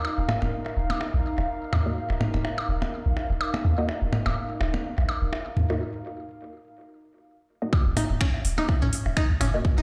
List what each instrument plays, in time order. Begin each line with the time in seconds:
Already playing: analog synth pad D#4 A#4 F5
0.05 percussion blips
0.18 sub bass D#1
0.29 mid tom, percussion blips
0.42 sub bass D#1, percussion blips
0.66 percussion blips
0.77 sub bass D#1
0.90 percussion blips
1.01 percussion blips
1.14 sub bass A#1
1.38 sub bass D#1, percussion blips
1.73 sub bass D#2, mid tom, percussion blips
1.86 synth stab A#3 F#4 D#5
2.10 sub bass D#1, percussion blips
2.21 mid tom, percussion blips
2.34 sub bass D#1, percussion blips
2.45 percussion blips
2.58 percussion blips
2.69 sub bass D#1
2.82 percussion blips
3.06 sub bass A#1
3.17 percussion blips
3.30 sub bass D#1
3.41 percussion blips
3.54 percussion blips
3.65 sub bass D#2
3.78 synth stab A#3 F#4 D#5
3.89 percussion blips
4.02 sub bass D#1
4.13 mid tom, percussion blips
4.26 sub bass D#1, percussion blips
4.61 sub bass D#1, percussion blips
4.74 percussion blips
4.98 sub bass A#1, percussion blips
5.09 percussion blips
5.22 sub bass D#1
5.33 percussion blips
5.57 sub bass D#2, mid tom
5.70 synth stab A#3 F#4 D#5, percussion blips
7.62 synth stab A#3 F#4 D#5
7.73 kick, percussion blips
7.86 sub bass D#1
7.97 synth pluck D#4, mid tom, open hi-hat, percussion blips
8.10 sub bass D#1
8.21 synth pluck C#4, finger snap, kick
8.34 percussion blips
8.45 sub bass D#1, open hi-hat
8.58 synth pluck D#4, percussion blips
8.69 kick, percussion blips
8.82 sub bass A#1, synth pluck C#4, mid tom
8.93 open hi-hat
9.06 sub bass D#1, percussion blips
9.17 synth pluck D#4, finger snap, kick
9.30 sub bass C#2
9.41 sub bass F#1, synth pluck C#4, mid tom, open hi-hat, percussion blips
9.54 sub bass D#1, synth stab A#3 F#4 D#5
9.65 kick
9.78 sub bass D#1, synth pluck D#4, percussion blips